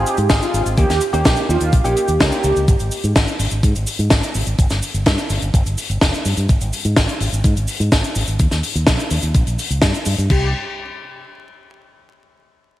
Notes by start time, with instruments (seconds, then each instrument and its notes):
Already playing: clean electric guitar C4 D#4 F4 G#4, analog polysynth G4
0.07 closed hi-hat, cabasa
0.17 fingered electric bass G#2, closed hi-hat, cabasa
0.29 fingered electric bass G#1, clean electric guitar C4 D#4 F4 G#4, kick, snare, closed hi-hat, cabasa
0.42 analog polysynth F4, closed hi-hat, cabasa
0.54 fingered electric bass G#1, closed hi-hat, cabasa
0.66 fingered electric bass G#1, closed hi-hat, cabasa
0.77 fingered electric bass D#2, clean electric guitar A#3 C#4 D#4 G4, analog polysynth G4, kick, closed hi-hat, cabasa
0.89 fingered electric bass D#2, snare, closed hi-hat, cabasa
1.01 closed hi-hat, cabasa
1.13 fingered electric bass D#2, clean electric guitar A#3 C#4 D#4 G4, analog polysynth G4, closed hi-hat, cabasa
1.25 fingered electric bass A#1, kick, snare, closed hi-hat, cabasa
1.36 closed hi-hat, cabasa
1.48 fingered electric bass D#2, clean electric guitar A#3 C#4 D#4 G4, analog polysynth F4, cabasa
1.60 fingered electric bass D#2, closed hi-hat, cabasa
1.72 fingered electric bass A#1, kick, closed hi-hat, cabasa
1.84 fingered electric bass A#1, clean electric guitar A#3 C#4 D#4 G4, analog polysynth G4, closed hi-hat, cabasa
1.97 closed hi-hat, cabasa
2.08 fingered electric bass D#2, closed hi-hat, cabasa
2.20 clean electric guitar A#3 C#4 D#4 G4, kick, snare, closed hi-hat, cabasa
2.32 analog polysynth G4, closed hi-hat, cabasa
2.44 fingered electric bass C#2, closed hi-hat, cabasa
2.56 fingered electric bass C#2, closed hi-hat, cabasa
2.68 fingered electric bass G#1, kick, closed hi-hat, cabasa
2.79 fingered electric bass G#1, closed hi-hat, cabasa
2.91 open hi-hat, cabasa
3.03 fingered electric bass G#2, closed hi-hat, cabasa
3.16 fingered electric bass G#1, kick, snare, closed hi-hat, cabasa
3.28 closed hi-hat, cabasa
3.39 fingered electric bass G#1, open hi-hat, cabasa
3.51 fingered electric bass G#1, closed hi-hat, cabasa
3.63 fingered electric bass G#2, kick, closed hi-hat, cabasa
3.75 fingered electric bass G#1, closed hi-hat, cabasa
3.87 open hi-hat, cabasa
3.99 fingered electric bass G#2, closed hi-hat, cabasa
4.10 fingered electric bass G#1, kick, snare, closed hi-hat, cabasa
4.23 closed hi-hat, cabasa
4.35 fingered electric bass G#1, open hi-hat, cabasa
4.46 fingered electric bass G#1, closed hi-hat, cabasa
4.58 fingered electric bass G1, kick, closed hi-hat, cabasa
4.70 fingered electric bass G1, snare, closed hi-hat, cabasa
4.83 open hi-hat, cabasa
4.94 fingered electric bass G1, closed hi-hat, cabasa
5.06 fingered electric bass G2, kick, snare, closed hi-hat, cabasa
5.18 closed hi-hat, cabasa
5.30 fingered electric bass G1, open hi-hat, cabasa
5.42 fingered electric bass G1, closed hi-hat, cabasa
5.54 fingered electric bass G1, kick, closed hi-hat, cabasa
5.66 fingered electric bass G1, closed hi-hat, cabasa
5.78 open hi-hat, cabasa
5.90 fingered electric bass G1, closed hi-hat, cabasa
6.01 fingered electric bass F1, kick, snare, closed hi-hat, cabasa
6.13 closed hi-hat, cabasa
6.25 fingered electric bass G2, open hi-hat, cabasa
6.37 fingered electric bass G2, closed hi-hat, cabasa
6.49 fingered electric bass G#1, kick, closed hi-hat, cabasa
6.61 fingered electric bass G#1, closed hi-hat, cabasa
6.73 open hi-hat, cabasa
6.85 fingered electric bass G#2, closed hi-hat, cabasa
6.96 fingered electric bass G#1, kick, snare, closed hi-hat, cabasa
7.09 closed hi-hat, cabasa
7.20 fingered electric bass G#1, open hi-hat, cabasa
7.32 fingered electric bass G#1, closed hi-hat, cabasa
7.44 fingered electric bass G#2, kick, closed hi-hat, cabasa
7.56 fingered electric bass G#1, closed hi-hat, cabasa
7.68 open hi-hat, cabasa
7.80 fingered electric bass G#2, closed hi-hat, cabasa
7.92 fingered electric bass G#1, kick, snare, closed hi-hat, cabasa
8.04 closed hi-hat, cabasa
8.15 fingered electric bass G#1, open hi-hat, cabasa
8.27 fingered electric bass G#1, closed hi-hat, cabasa
8.39 fingered electric bass D#2, kick, closed hi-hat, cabasa
8.51 fingered electric bass D#2, snare, closed hi-hat, cabasa
8.63 open hi-hat, cabasa
8.75 fingered electric bass D#2, closed hi-hat, cabasa
8.87 fingered electric bass A#1, kick, snare, closed hi-hat, cabasa
8.99 closed hi-hat, cabasa
9.10 fingered electric bass D#2, open hi-hat, cabasa
9.22 fingered electric bass D#2, closed hi-hat, cabasa
9.34 fingered electric bass A#1, kick, closed hi-hat, cabasa
9.47 fingered electric bass A#1, closed hi-hat, cabasa
9.59 open hi-hat, cabasa
9.70 fingered electric bass C#2, closed hi-hat, cabasa
9.82 fingered electric bass G2, kick, snare, closed hi-hat, cabasa
9.94 closed hi-hat, cabasa
10.06 fingered electric bass G2, open hi-hat, cabasa
10.18 fingered electric bass G2, closed hi-hat, cabasa
10.30 fingered electric bass C2, analog polysynth G4, kick, crash